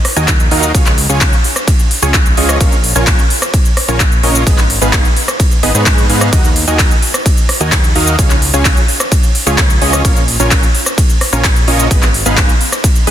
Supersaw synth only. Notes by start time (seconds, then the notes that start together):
0.16 D#4 F#4 A#4 D#5 G#5
0.51 D#4 F#4 A#4 D#5 F5
0.75 C#4 F4 G#4 C#5 F5
1.09 C#4 F4 G#4 C#5 G#5
2.02 C#4 F4 G#4 C#5 G#5
2.37 C#4 F4 G#4 C#5 D#5
2.61 C#4 F4 A#4 C#5 F5
2.95 C#4 F4 A#4 C#5 G#5
3.88 C#4 F4 A#4 C#5 G#5
4.23 C#4 F4 A#4 C#5 D#5
4.47 B3 D#4 G#4 B4 D#5
4.82 B3 D#4 G#4 B4 F5
5.63 B3 D#4 G#4 B4 D#5
5.75 B3 D#4 G#4 B4 C#5
6.09 B3 D#4 G#4 B4 F5
6.33 D#4 F#4 A#4 D#5 F#5
6.68 D#4 F#4 A#4 D#5 G#5
7.61 D#4 F#4 A#4 D#5 G#5
7.95 D#4 F#4 A#4 D#5 F5
8.19 C#4 F4 G#4 C#5 F5
8.54 C#4 F4 G#4 C#5 G#5
9.47 C#4 F4 G#4 C#5 G#5
9.82 C#4 F4 G#4 C#5 D#5
10.05 C#4 F4 A#4 C#5 F5
10.40 C#4 F4 A#4 C#5 G#5
11.33 C#4 F4 A#4 C#5 G#5
11.68 C#4 F4 A#4 C#5 D#5
11.91 B3 D#4 G#4 B4 D#5
12.26 B3 D#4 G#4 B4 F5
13.07 B3 D#4 G#4 B4 D#5